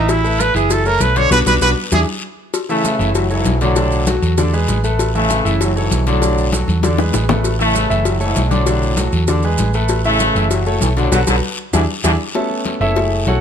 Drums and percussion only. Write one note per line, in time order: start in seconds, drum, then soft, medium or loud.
0.08 cowbell loud
0.08 high conga soft
0.08 long guiro medium
0.08 maracas medium
0.25 high conga soft
0.25 maracas soft
0.39 cowbell medium
0.39 high conga medium
0.39 short guiro medium
0.39 maracas medium
0.54 high conga soft
0.54 short guiro medium
0.54 maracas soft
0.69 cowbell loud
0.69 high conga soft
0.69 long guiro medium
0.69 maracas medium
0.86 high conga soft
0.86 maracas soft
1.00 cowbell medium
1.00 high conga medium
1.00 short guiro medium
1.00 maracas medium
1.15 cowbell medium
1.15 short guiro medium
1.15 maracas soft
1.30 cowbell loud
1.30 high conga loud
1.30 long guiro loud
1.30 maracas medium
1.46 cowbell loud
1.46 high conga loud
1.46 long guiro loud
1.46 maracas loud
1.61 cowbell medium
1.61 high conga loud
1.61 long guiro loud
1.61 maracas loud
1.92 cowbell loud
1.92 high conga loud
1.92 long guiro loud
1.92 maracas loud
2.54 cowbell loud
2.54 high conga soft
2.54 long guiro medium
2.54 maracas medium
2.69 high conga soft
2.69 maracas soft
2.84 cowbell medium
2.84 high conga medium
2.84 short guiro medium
2.84 maracas medium
2.99 high conga soft
2.99 short guiro medium
2.99 maracas soft
3.15 cowbell loud
3.15 high conga soft
3.15 long guiro medium
3.15 maracas medium
3.30 high conga soft
3.30 maracas soft
3.45 cowbell medium
3.45 high conga medium
3.45 short guiro medium
3.45 maracas medium
3.61 cowbell medium
3.61 short guiro medium
3.61 maracas soft
3.76 cowbell loud
3.76 long guiro medium
3.76 maracas medium
3.92 high conga soft
3.92 maracas soft
4.07 cowbell medium
4.07 high conga loud
4.07 short guiro medium
4.07 maracas medium
4.22 short guiro medium
4.22 maracas soft
4.38 cowbell loud
4.38 high conga soft
4.38 low conga medium
4.38 long guiro medium
4.38 maracas medium
4.53 high conga soft
4.53 maracas soft
4.68 cowbell medium
4.68 high conga medium
4.68 short guiro medium
4.68 maracas medium
4.84 high conga soft
4.84 short guiro medium
4.84 maracas soft
4.99 cowbell loud
4.99 high conga soft
4.99 long guiro medium
4.99 maracas medium
5.15 high conga soft
5.15 maracas soft
5.30 cowbell medium
5.30 high conga medium
5.30 short guiro medium
5.30 maracas medium
5.45 high conga soft
5.45 short guiro medium
5.45 maracas soft
5.61 cowbell loud
5.61 high conga soft
5.61 long guiro medium
5.61 maracas medium
5.77 high conga soft
5.77 maracas soft
5.91 cowbell medium
5.91 high conga medium
5.91 short guiro medium
5.91 maracas medium
6.07 cowbell medium
6.07 short guiro medium
6.07 maracas soft
6.22 cowbell loud
6.22 high conga soft
6.22 long guiro medium
6.22 maracas medium
6.38 high conga soft
6.38 maracas soft
6.53 cowbell medium
6.53 high conga loud
6.53 short guiro medium
6.53 maracas medium
6.68 high conga medium
6.68 short guiro medium
6.68 maracas soft
6.83 cowbell loud
6.83 high conga loud
6.83 long guiro medium
6.83 maracas medium
6.98 high bongo medium
6.98 high conga medium
6.98 maracas soft
7.14 cowbell medium
7.14 high bongo medium
7.14 low conga medium
7.14 short guiro medium
7.14 maracas medium
7.29 low bongo loud
7.29 low conga loud
7.29 short guiro medium
7.29 maracas soft
7.44 cowbell loud
7.44 high conga soft
7.44 long guiro medium
7.44 maracas medium
7.60 high conga soft
7.60 maracas soft
7.75 cowbell medium
7.75 high conga medium
7.75 short guiro medium
7.75 maracas medium
7.90 high conga soft
7.90 short guiro medium
7.90 maracas soft
8.05 cowbell loud
8.05 high conga soft
8.05 long guiro medium
8.05 maracas medium
8.20 high conga soft
8.20 maracas soft
8.36 cowbell medium
8.36 high conga medium
8.36 short guiro medium
8.36 maracas medium
8.51 cowbell medium
8.51 high conga medium
8.51 short guiro medium
8.51 maracas soft
8.66 cowbell loud
8.66 high conga soft
8.66 long guiro medium
8.66 maracas medium
8.81 high conga soft
8.81 maracas soft
8.97 cowbell medium
8.97 high conga loud
8.97 short guiro medium
8.97 maracas medium
9.12 short guiro medium
9.12 maracas soft
9.27 cowbell loud
9.27 high conga soft
9.27 low conga medium
9.27 long guiro medium
9.27 maracas medium
9.43 high conga soft
9.43 maracas soft
9.58 cowbell medium
9.58 high conga medium
9.58 short guiro medium
9.58 maracas medium
9.73 high conga soft
9.73 short guiro medium
9.73 maracas soft
9.88 cowbell loud
9.88 high conga soft
9.88 long guiro medium
9.88 maracas medium
10.04 high conga soft
10.04 maracas soft
10.20 cowbell medium
10.20 high conga medium
10.20 short guiro medium
10.20 maracas medium
10.35 high conga soft
10.35 short guiro medium
10.35 maracas soft
10.50 cowbell loud
10.50 high conga soft
10.50 long guiro medium
10.50 maracas medium
10.66 high conga soft
10.66 maracas soft
10.81 cowbell medium
10.81 high conga medium
10.81 short guiro medium
10.81 maracas medium
10.97 cowbell medium
10.97 short guiro medium
10.97 maracas soft
11.12 cowbell loud
11.12 high conga loud
11.12 long guiro loud
11.12 maracas loud
11.27 cowbell loud
11.27 high conga loud
11.27 long guiro loud
11.27 maracas medium
11.73 cowbell loud
11.73 high conga loud
11.73 long guiro loud
11.73 maracas loud
12.04 cowbell loud
12.04 high conga loud
12.04 long guiro medium
12.04 maracas loud
12.35 cowbell medium
12.35 high conga soft
12.35 long guiro medium
12.50 high conga soft
12.65 cowbell medium
12.65 high conga medium
12.65 short guiro medium
12.81 high conga soft
12.81 short guiro medium
12.96 cowbell loud
12.96 high conga soft
12.96 long guiro medium
13.12 high conga soft
13.27 cowbell medium
13.27 high conga medium
13.27 short guiro medium